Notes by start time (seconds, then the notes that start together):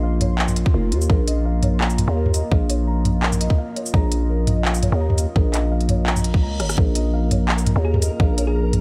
Already playing: A#1 A#3 F4 A#4 C#5 D#5 F5 C6
0.03 F5
0.21 C#5, closed hi-hat, mid tom
0.39 F4, clap
0.48 mid tom, shaker
0.56 closed hi-hat
0.66 kick
0.74 F1 A#4
0.92 D#2 A#4, closed hi-hat
1.01 shaker
1.10 A#1 A#4 D#5, kick
1.27 D#5, closed hi-hat
1.45 F5
1.63 C#5, closed hi-hat, mid tom
1.81 A#5, clap
1.90 shaker
1.98 closed hi-hat, mid tom
2.08 D#2
2.16 A#4
2.26 mid tom
2.34 D#5, closed hi-hat, shaker
2.52 A#1 F5, kick
2.69 C#5, closed hi-hat, shaker
2.87 A#5
3.05 closed hi-hat, mid tom
3.23 A#4, clap
3.32 mid tom, shaker
3.41 D#5, closed hi-hat
3.50 kick
3.58 F5
3.76 C#5, closed hi-hat
3.86 shaker
3.94 A#1 A#5, kick
4.12 closed hi-hat
4.29 A#4
4.47 D#5, closed hi-hat, mid tom
4.65 F5, clap
4.74 shaker
4.83 C#5, closed hi-hat, mid tom
4.92 D#2
5.00 A#5
5.10 mid tom
5.18 closed hi-hat, shaker
5.36 A#1 A#4, kick
5.54 D#5, clap, closed hi-hat, shaker
5.72 F5
5.81 closed hi-hat
5.89 C#5, closed hi-hat, mid tom
6.06 A#5, clap, reverse cymbal
6.16 mid tom, shaker
6.24 closed hi-hat
6.34 kick
6.42 C#2 A#5
6.60 G#1 C#5, cross-stick, closed hi-hat
6.69 cross-stick, shaker
6.78 A#1 A#4, kick
6.95 D#5, closed hi-hat
7.14 F5
7.31 C#5, closed hi-hat, mid tom
7.49 A#5, clap
7.58 shaker
7.67 closed hi-hat, mid tom
7.76 D#2
7.85 G#4 A#4
7.94 mid tom
8.02 D#5, closed hi-hat, shaker
8.20 A#1 F5, kick
8.38 C#5, closed hi-hat, shaker
8.47 G#4
8.55 A#5
8.73 closed hi-hat, mid tom